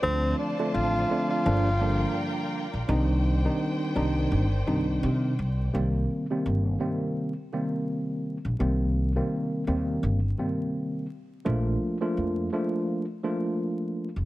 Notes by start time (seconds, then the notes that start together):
Already playing: C5 D5
0.02 D2 D3 F3 A3 C4 D4 F4 A5
0.38 D4
0.59 D3 F3 A3 C4 D4
0.73 A1 F4
1.10 D3 F3 A3 C4 D4
1.30 F4
1.45 G1 D3 F3 G3 A#3 D4 F4 A#4 G5
1.80 D3 F3 G3 A#3 D4
2.74 A#1
2.88 C2 D#3 G3 C4 D4 D#4 C5 G5
3.45 D#3 G3 C4 D4 D#4
3.95 C2 D#3 G3 C4 D4 D#4
4.32 G1
4.67 C2 D#3 G3 C4 D4 D#4
5.03 C3
5.39 C2
5.73 C2 C3 D#3 G3 A#3 C4
6.30 C3 D#3 G3 A#3 C4
6.46 G1
6.80 C3 D#3 G3 A#3 C4
7.52 C3 D#3 G3 A#3 C4
8.45 A#1
8.60 C2 C3 D#3 G3 A#3 C4
9.15 C3 D#3 G3 A#3 C4
9.67 D#2 C3 D#3 G3 A#3 C4
10.03 G1
10.38 C3 D#3 G3 A#3 C4
11.45 A#1 F3 A3 A#3 D4 F4
12.01 F3 A3 A#3 D4 F4
12.17 F2
12.53 F3 A3 A#3 D4 F4
13.23 F3 A3 A#3 D4 F4
14.16 F1